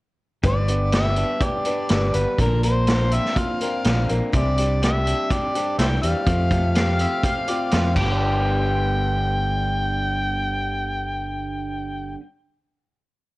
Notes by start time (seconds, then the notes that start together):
0.43 G1 G2 D3 G3 B3 D4 B4, kick, closed hi-hat
0.48 D5
0.68 G3 B3 D4 B4, closed hi-hat
0.92 G3 B3 D4 G4 B4 E5, snare, closed hi-hat
1.16 D4, closed hi-hat
1.41 G4 D5, kick, closed hi-hat
1.65 G3 B3 D4 B4, closed hi-hat
1.89 G1 G3 B3 D4 B4, snare, closed hi-hat
2.14 G1 G3 B3 D4 B4, closed hi-hat
2.39 A#1 A#2 D3 F3 C4 D4 A#4, kick, closed hi-hat
2.63 F3 A#3 C4 D4 A#4 C5, closed hi-hat
2.87 F3 C4 D4 F4 A#4, snare, closed hi-hat
3.11 C4 E5, closed hi-hat
3.25 snare
3.36 F4 F5, kick, closed hi-hat
3.61 F3 C4 D4 A#4, closed hi-hat
3.84 A#1 D3 F3 C4 D4 A#4, snare, closed hi-hat
4.09 A#1 F3 A#3 C4 D4 A#4, closed hi-hat
4.33 C2 C3 E3 G3 C4 D4 G4 D5, kick, closed hi-hat
4.57 G3 C4 D4 G4, closed hi-hat
4.82 G3 C4 D4 G4 E5, snare, closed hi-hat
5.07 D4, closed hi-hat
5.30 G4 D5, kick, closed hi-hat
5.55 G3 C4 D4 G4, closed hi-hat
5.79 C2 E3 G3 C4 D4 G4 C5 E5 G5, snare, closed hi-hat
6.02 E2 G3 C4 D4 G4 F5, closed hi-hat
6.26 F2 F3 A3 C4 F4 G4, kick, closed hi-hat
6.51 A3 C4 F4 G4, kick, closed hi-hat
6.75 A3 C4 F4 G4 F5, snare, closed hi-hat
6.99 C4 E5, closed hi-hat
7.23 G4 F5, kick, closed hi-hat
7.47 C4 F4 G4 D5, closed hi-hat
7.71 F2 F3 A3 C4 F4 G4, snare, closed hi-hat
7.93 G1 G2 D3 G4 G5, kick, crash
7.99 G3 B3 G4
8.04 D4 G4